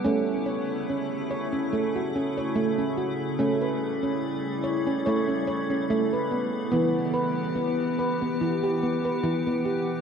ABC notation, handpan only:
X:1
M:4/4
L:1/16
Q:"Swing 16ths" 1/4=72
K:none
V:1 name="Handpan"
^C2 ^c2 C2 c C2 ^F C c2 C F2 | ^C B2 C2 z ^c C c C c C2 B B,2 | B,2 B2 B,2 B B,2 G B, B2 B, G2 |]
V:2 name="Handpan"
A,8 A,4 A,4 | A,8 A,4 A,4 | E,8 E,4 E,4 |]